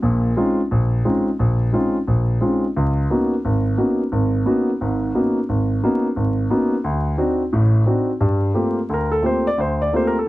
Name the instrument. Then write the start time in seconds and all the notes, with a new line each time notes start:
grand piano
0.03 A#1 A#2
0.37 G#3 C4 C#4 D#4 F4
0.71 A#1
1.05 G#3 C4 C#4 D#4 F4
1.39 A#1
1.73 G#3 C4 C#4 D#4 F4
2.07 A#1
2.41 G#3 C4 C#4 D#4 F4
2.76 C#2
3.10 A#3 B3 C#4 D#4 F#4
3.45 G#1
3.77 A#3 B3 C#4 D#4 F#4
4.12 G#1
4.46 A#3 B3 C#4 D#4 F#4
4.81 G#1 G#2
5.15 A#3 B3 C#4 D#4 F#4
5.49 G#1
5.84 A#3 B3 C#4 D#4 F#4
6.16 G#1
6.50 A#3 B3 C#4 D#4 F#4
6.84 D2
7.18 C4 D4 D#4 F#4
7.53 A1 A2
7.86 C4 D4 D#4 F#4
8.21 G2 G3
8.54 A3 A#3 C4 F4 G4
8.89 D2 A4
8.94 A#4
9.12 A4
9.22 A3 A#3 C4 F4 G4 C5
9.47 D5
9.58 D2 C5
9.82 D5
9.93 A3 A#3 C4 F4 G4 C5
10.07 A#4
10.19 A4